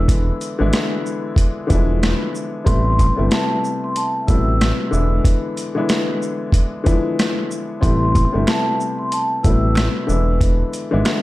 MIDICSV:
0, 0, Header, 1, 5, 480
1, 0, Start_track
1, 0, Key_signature, 0, "minor"
1, 0, Tempo, 645161
1, 63, Time_signature, 4, 2, 24, 8
1, 8348, End_track
2, 0, Start_track
2, 0, Title_t, "Vibraphone"
2, 0, Program_c, 0, 11
2, 1979, Note_on_c, 0, 84, 119
2, 2432, Note_off_c, 0, 84, 0
2, 2453, Note_on_c, 0, 81, 90
2, 2819, Note_off_c, 0, 81, 0
2, 2857, Note_on_c, 0, 84, 89
2, 2939, Note_off_c, 0, 84, 0
2, 2955, Note_on_c, 0, 81, 91
2, 3166, Note_off_c, 0, 81, 0
2, 3180, Note_on_c, 0, 88, 75
2, 3872, Note_off_c, 0, 88, 0
2, 5813, Note_on_c, 0, 84, 109
2, 6269, Note_off_c, 0, 84, 0
2, 6315, Note_on_c, 0, 81, 89
2, 6671, Note_off_c, 0, 81, 0
2, 6684, Note_on_c, 0, 84, 97
2, 6772, Note_off_c, 0, 84, 0
2, 6797, Note_on_c, 0, 81, 94
2, 7007, Note_off_c, 0, 81, 0
2, 7017, Note_on_c, 0, 88, 81
2, 7711, Note_off_c, 0, 88, 0
2, 8348, End_track
3, 0, Start_track
3, 0, Title_t, "Grand piano"
3, 0, Program_c, 1, 0
3, 0, Control_c, 1, 64, 127
3, 0, Note_on_c, 1, 50, 84
3, 0, Note_on_c, 1, 52, 83
3, 0, Note_on_c, 1, 56, 68
3, 0, Note_on_c, 1, 59, 79
3, 0, Note_on_c, 1, 64, 94
3, 297, Note_off_c, 1, 50, 0
3, 300, Note_off_c, 1, 52, 0
3, 303, Note_off_c, 1, 56, 0
3, 305, Note_off_c, 1, 59, 0
3, 308, Note_off_c, 1, 64, 0
3, 436, Note_on_c, 1, 50, 93
3, 440, Note_on_c, 1, 52, 94
3, 446, Note_on_c, 1, 56, 85
3, 452, Note_on_c, 1, 59, 81
3, 457, Note_on_c, 1, 64, 107
3, 1050, Note_off_c, 1, 50, 0
3, 1053, Note_off_c, 1, 52, 0
3, 1056, Note_off_c, 1, 56, 0
3, 1058, Note_off_c, 1, 59, 0
3, 1061, Note_off_c, 1, 64, 0
3, 1242, Note_on_c, 1, 50, 88
3, 1247, Note_on_c, 1, 52, 85
3, 1252, Note_on_c, 1, 53, 73
3, 1258, Note_on_c, 1, 59, 81
3, 1264, Note_on_c, 1, 64, 103
3, 1301, Note_on_c, 1, 56, 80
3, 1316, Note_off_c, 1, 53, 0
3, 1802, Note_off_c, 1, 50, 0
3, 1804, Note_off_c, 1, 52, 0
3, 1810, Note_off_c, 1, 59, 0
3, 1813, Note_off_c, 1, 64, 0
3, 1831, Note_off_c, 1, 56, 0
3, 1967, Note_on_c, 1, 48, 83
3, 1972, Note_on_c, 1, 55, 70
3, 1978, Note_on_c, 1, 57, 77
3, 1984, Note_on_c, 1, 59, 73
3, 1990, Note_on_c, 1, 64, 85
3, 1993, Control_c, 1, 64, 0
3, 2133, Control_c, 1, 64, 127
3, 2250, Note_off_c, 1, 48, 0
3, 2252, Note_off_c, 1, 55, 0
3, 2255, Note_off_c, 1, 57, 0
3, 2258, Note_off_c, 1, 59, 0
3, 2261, Note_off_c, 1, 64, 0
3, 2354, Note_on_c, 1, 48, 80
3, 2359, Note_on_c, 1, 55, 72
3, 2364, Note_on_c, 1, 57, 81
3, 2370, Note_on_c, 1, 59, 70
3, 2376, Note_on_c, 1, 64, 87
3, 2969, Note_off_c, 1, 48, 0
3, 2972, Note_off_c, 1, 55, 0
3, 2974, Note_off_c, 1, 57, 0
3, 2978, Note_off_c, 1, 59, 0
3, 2980, Note_off_c, 1, 64, 0
3, 3179, Note_on_c, 1, 47, 67
3, 3185, Note_on_c, 1, 55, 69
3, 3190, Note_on_c, 1, 57, 72
3, 3195, Note_on_c, 1, 59, 72
3, 3201, Note_on_c, 1, 64, 86
3, 3228, Note_on_c, 1, 48, 73
3, 3239, Note_off_c, 1, 47, 0
3, 3651, Note_on_c, 1, 50, 85
3, 3656, Note_off_c, 1, 59, 0
3, 3657, Note_on_c, 1, 52, 80
3, 3662, Note_off_c, 1, 64, 0
3, 3662, Note_on_c, 1, 56, 68
3, 3664, Note_off_c, 1, 55, 0
3, 3667, Note_off_c, 1, 57, 0
3, 3667, Note_on_c, 1, 59, 78
3, 3673, Control_c, 1, 64, 0
3, 3673, Note_on_c, 1, 64, 97
3, 3686, Note_off_c, 1, 48, 0
3, 3819, Control_c, 1, 64, 127
3, 4137, Note_off_c, 1, 50, 0
3, 4140, Note_off_c, 1, 52, 0
3, 4143, Note_off_c, 1, 56, 0
3, 4145, Note_off_c, 1, 59, 0
3, 4148, Note_off_c, 1, 64, 0
3, 4277, Note_on_c, 1, 50, 94
3, 4283, Note_on_c, 1, 52, 88
3, 4289, Note_on_c, 1, 56, 83
3, 4293, Note_on_c, 1, 59, 83
3, 4299, Note_on_c, 1, 64, 104
3, 4891, Note_off_c, 1, 50, 0
3, 4894, Note_off_c, 1, 52, 0
3, 4897, Note_off_c, 1, 56, 0
3, 4899, Note_off_c, 1, 59, 0
3, 4902, Note_off_c, 1, 64, 0
3, 5086, Note_on_c, 1, 50, 88
3, 5091, Note_on_c, 1, 52, 86
3, 5097, Note_on_c, 1, 53, 72
3, 5102, Note_on_c, 1, 59, 79
3, 5108, Note_on_c, 1, 64, 105
3, 5145, Note_on_c, 1, 56, 80
3, 5158, Note_off_c, 1, 53, 0
3, 5644, Note_off_c, 1, 50, 0
3, 5647, Note_off_c, 1, 52, 0
3, 5652, Note_off_c, 1, 59, 0
3, 5655, Note_off_c, 1, 64, 0
3, 5674, Note_off_c, 1, 56, 0
3, 5808, Note_on_c, 1, 48, 83
3, 5815, Note_on_c, 1, 55, 67
3, 5819, Note_on_c, 1, 57, 76
3, 5825, Note_on_c, 1, 59, 73
3, 5830, Note_on_c, 1, 64, 85
3, 5833, Control_c, 1, 64, 0
3, 5959, Control_c, 1, 64, 127
3, 6090, Note_off_c, 1, 48, 0
3, 6094, Note_off_c, 1, 55, 0
3, 6096, Note_off_c, 1, 57, 0
3, 6099, Note_off_c, 1, 59, 0
3, 6102, Note_off_c, 1, 64, 0
3, 6193, Note_on_c, 1, 48, 83
3, 6199, Note_on_c, 1, 55, 73
3, 6204, Note_on_c, 1, 57, 80
3, 6210, Note_on_c, 1, 59, 68
3, 6216, Note_on_c, 1, 64, 85
3, 6809, Note_off_c, 1, 48, 0
3, 6812, Note_off_c, 1, 55, 0
3, 6815, Note_off_c, 1, 57, 0
3, 6817, Note_off_c, 1, 59, 0
3, 6820, Note_off_c, 1, 64, 0
3, 7018, Note_on_c, 1, 47, 65
3, 7025, Note_on_c, 1, 55, 66
3, 7030, Note_on_c, 1, 57, 71
3, 7035, Note_on_c, 1, 59, 70
3, 7041, Note_on_c, 1, 64, 88
3, 7067, Note_on_c, 1, 48, 72
3, 7079, Note_off_c, 1, 47, 0
3, 7491, Note_on_c, 1, 50, 82
3, 7495, Note_off_c, 1, 59, 0
3, 7496, Note_on_c, 1, 52, 80
3, 7501, Note_off_c, 1, 64, 0
3, 7501, Note_on_c, 1, 56, 70
3, 7504, Note_off_c, 1, 55, 0
3, 7507, Note_off_c, 1, 57, 0
3, 7507, Note_on_c, 1, 59, 77
3, 7513, Control_c, 1, 64, 0
3, 7513, Note_on_c, 1, 64, 94
3, 7525, Note_off_c, 1, 48, 0
3, 7646, Control_c, 1, 64, 127
3, 7977, Note_off_c, 1, 50, 0
3, 7980, Note_off_c, 1, 52, 0
3, 7982, Note_off_c, 1, 56, 0
3, 7985, Note_off_c, 1, 59, 0
3, 7988, Note_off_c, 1, 64, 0
3, 8116, Note_on_c, 1, 50, 96
3, 8121, Note_on_c, 1, 52, 89
3, 8128, Note_on_c, 1, 56, 85
3, 8133, Note_on_c, 1, 59, 81
3, 8138, Note_on_c, 1, 64, 105
3, 8348, Note_off_c, 1, 50, 0
3, 8348, Note_off_c, 1, 52, 0
3, 8348, Note_off_c, 1, 56, 0
3, 8348, Note_off_c, 1, 59, 0
3, 8348, Note_off_c, 1, 64, 0
3, 8348, End_track
4, 0, Start_track
4, 0, Title_t, "Analog synth bass"
4, 0, Program_c, 2, 38
4, 0, Note_on_c, 2, 28, 104
4, 233, Note_off_c, 2, 28, 0
4, 451, Note_on_c, 2, 32, 94
4, 531, Note_off_c, 2, 32, 0
4, 1270, Note_on_c, 2, 28, 97
4, 1593, Note_off_c, 2, 28, 0
4, 1985, Note_on_c, 2, 33, 115
4, 2310, Note_off_c, 2, 33, 0
4, 2374, Note_on_c, 2, 31, 86
4, 2452, Note_off_c, 2, 31, 0
4, 3190, Note_on_c, 2, 33, 91
4, 3513, Note_off_c, 2, 33, 0
4, 3667, Note_on_c, 2, 28, 103
4, 3869, Note_off_c, 2, 28, 0
4, 5825, Note_on_c, 2, 33, 114
4, 6150, Note_off_c, 2, 33, 0
4, 6214, Note_on_c, 2, 31, 90
4, 6292, Note_off_c, 2, 31, 0
4, 7030, Note_on_c, 2, 33, 94
4, 7353, Note_off_c, 2, 33, 0
4, 7508, Note_on_c, 2, 28, 102
4, 7913, Note_off_c, 2, 28, 0
4, 8132, Note_on_c, 2, 32, 99
4, 8211, Note_off_c, 2, 32, 0
4, 8348, End_track
5, 0, Start_track
5, 0, Title_t, "Drums"
5, 63, Note_on_c, 9, 36, 105
5, 66, Note_on_c, 9, 42, 89
5, 137, Note_off_c, 9, 36, 0
5, 140, Note_off_c, 9, 42, 0
5, 306, Note_on_c, 9, 42, 59
5, 306, Note_on_c, 9, 82, 61
5, 381, Note_off_c, 9, 42, 0
5, 381, Note_off_c, 9, 82, 0
5, 541, Note_on_c, 9, 42, 74
5, 547, Note_on_c, 9, 37, 97
5, 547, Note_on_c, 9, 38, 124
5, 616, Note_off_c, 9, 42, 0
5, 621, Note_off_c, 9, 38, 0
5, 622, Note_off_c, 9, 37, 0
5, 789, Note_on_c, 9, 82, 48
5, 864, Note_off_c, 9, 82, 0
5, 1014, Note_on_c, 9, 36, 97
5, 1025, Note_on_c, 9, 42, 89
5, 1089, Note_off_c, 9, 36, 0
5, 1099, Note_off_c, 9, 42, 0
5, 1265, Note_on_c, 9, 42, 54
5, 1265, Note_on_c, 9, 82, 54
5, 1267, Note_on_c, 9, 36, 99
5, 1339, Note_off_c, 9, 42, 0
5, 1339, Note_off_c, 9, 82, 0
5, 1341, Note_off_c, 9, 36, 0
5, 1510, Note_on_c, 9, 42, 72
5, 1512, Note_on_c, 9, 38, 114
5, 1513, Note_on_c, 9, 37, 95
5, 1584, Note_off_c, 9, 42, 0
5, 1587, Note_off_c, 9, 37, 0
5, 1587, Note_off_c, 9, 38, 0
5, 1748, Note_on_c, 9, 82, 66
5, 1823, Note_off_c, 9, 82, 0
5, 1983, Note_on_c, 9, 36, 109
5, 1985, Note_on_c, 9, 42, 87
5, 2057, Note_off_c, 9, 36, 0
5, 2060, Note_off_c, 9, 42, 0
5, 2224, Note_on_c, 9, 36, 94
5, 2227, Note_on_c, 9, 42, 58
5, 2227, Note_on_c, 9, 82, 58
5, 2298, Note_off_c, 9, 36, 0
5, 2301, Note_off_c, 9, 42, 0
5, 2301, Note_off_c, 9, 82, 0
5, 2462, Note_on_c, 9, 42, 73
5, 2468, Note_on_c, 9, 37, 98
5, 2468, Note_on_c, 9, 38, 125
5, 2537, Note_off_c, 9, 42, 0
5, 2542, Note_off_c, 9, 38, 0
5, 2543, Note_off_c, 9, 37, 0
5, 2711, Note_on_c, 9, 82, 48
5, 2785, Note_off_c, 9, 82, 0
5, 2945, Note_on_c, 9, 42, 86
5, 3020, Note_off_c, 9, 42, 0
5, 3187, Note_on_c, 9, 42, 53
5, 3187, Note_on_c, 9, 82, 53
5, 3188, Note_on_c, 9, 36, 96
5, 3261, Note_off_c, 9, 42, 0
5, 3261, Note_off_c, 9, 82, 0
5, 3262, Note_off_c, 9, 36, 0
5, 3431, Note_on_c, 9, 42, 71
5, 3433, Note_on_c, 9, 38, 116
5, 3434, Note_on_c, 9, 37, 94
5, 3505, Note_off_c, 9, 42, 0
5, 3508, Note_off_c, 9, 37, 0
5, 3508, Note_off_c, 9, 38, 0
5, 3667, Note_on_c, 9, 82, 64
5, 3742, Note_off_c, 9, 82, 0
5, 3903, Note_on_c, 9, 36, 104
5, 3906, Note_on_c, 9, 42, 86
5, 3977, Note_off_c, 9, 36, 0
5, 3981, Note_off_c, 9, 42, 0
5, 4147, Note_on_c, 9, 42, 60
5, 4147, Note_on_c, 9, 82, 61
5, 4221, Note_off_c, 9, 42, 0
5, 4221, Note_off_c, 9, 82, 0
5, 4382, Note_on_c, 9, 42, 73
5, 4388, Note_on_c, 9, 37, 101
5, 4388, Note_on_c, 9, 38, 127
5, 4457, Note_off_c, 9, 42, 0
5, 4462, Note_off_c, 9, 38, 0
5, 4463, Note_off_c, 9, 37, 0
5, 4629, Note_on_c, 9, 82, 50
5, 4703, Note_off_c, 9, 82, 0
5, 4854, Note_on_c, 9, 36, 93
5, 4864, Note_on_c, 9, 42, 88
5, 4929, Note_off_c, 9, 36, 0
5, 4939, Note_off_c, 9, 42, 0
5, 5106, Note_on_c, 9, 42, 52
5, 5106, Note_on_c, 9, 82, 54
5, 5107, Note_on_c, 9, 36, 100
5, 5181, Note_off_c, 9, 42, 0
5, 5181, Note_off_c, 9, 82, 0
5, 5182, Note_off_c, 9, 36, 0
5, 5351, Note_on_c, 9, 42, 71
5, 5354, Note_on_c, 9, 37, 95
5, 5354, Note_on_c, 9, 38, 116
5, 5425, Note_off_c, 9, 42, 0
5, 5428, Note_off_c, 9, 37, 0
5, 5428, Note_off_c, 9, 38, 0
5, 5588, Note_on_c, 9, 82, 64
5, 5663, Note_off_c, 9, 82, 0
5, 5823, Note_on_c, 9, 36, 107
5, 5827, Note_on_c, 9, 42, 86
5, 5898, Note_off_c, 9, 36, 0
5, 5901, Note_off_c, 9, 42, 0
5, 6064, Note_on_c, 9, 36, 96
5, 6067, Note_on_c, 9, 42, 59
5, 6067, Note_on_c, 9, 82, 59
5, 6138, Note_off_c, 9, 36, 0
5, 6141, Note_off_c, 9, 42, 0
5, 6141, Note_off_c, 9, 82, 0
5, 6303, Note_on_c, 9, 26, 82
5, 6303, Note_on_c, 9, 42, 75
5, 6308, Note_on_c, 9, 38, 120
5, 6309, Note_on_c, 9, 37, 100
5, 6377, Note_off_c, 9, 26, 0
5, 6377, Note_off_c, 9, 42, 0
5, 6383, Note_off_c, 9, 37, 0
5, 6383, Note_off_c, 9, 38, 0
5, 6550, Note_on_c, 9, 82, 51
5, 6624, Note_off_c, 9, 82, 0
5, 6785, Note_on_c, 9, 42, 89
5, 6860, Note_off_c, 9, 42, 0
5, 7027, Note_on_c, 9, 36, 99
5, 7027, Note_on_c, 9, 42, 54
5, 7027, Note_on_c, 9, 82, 53
5, 7101, Note_off_c, 9, 42, 0
5, 7101, Note_off_c, 9, 82, 0
5, 7102, Note_off_c, 9, 36, 0
5, 7257, Note_on_c, 9, 26, 75
5, 7270, Note_on_c, 9, 42, 72
5, 7272, Note_on_c, 9, 38, 113
5, 7273, Note_on_c, 9, 37, 92
5, 7331, Note_off_c, 9, 26, 0
5, 7344, Note_off_c, 9, 42, 0
5, 7347, Note_off_c, 9, 37, 0
5, 7347, Note_off_c, 9, 38, 0
5, 7508, Note_on_c, 9, 82, 63
5, 7582, Note_off_c, 9, 82, 0
5, 7742, Note_on_c, 9, 36, 112
5, 7745, Note_on_c, 9, 42, 86
5, 7817, Note_off_c, 9, 36, 0
5, 7820, Note_off_c, 9, 42, 0
5, 7987, Note_on_c, 9, 42, 56
5, 7987, Note_on_c, 9, 82, 60
5, 8061, Note_off_c, 9, 42, 0
5, 8061, Note_off_c, 9, 82, 0
5, 8222, Note_on_c, 9, 42, 73
5, 8224, Note_on_c, 9, 26, 80
5, 8228, Note_on_c, 9, 37, 100
5, 8228, Note_on_c, 9, 38, 124
5, 8296, Note_off_c, 9, 42, 0
5, 8298, Note_off_c, 9, 26, 0
5, 8302, Note_off_c, 9, 37, 0
5, 8302, Note_off_c, 9, 38, 0
5, 8348, End_track
0, 0, End_of_file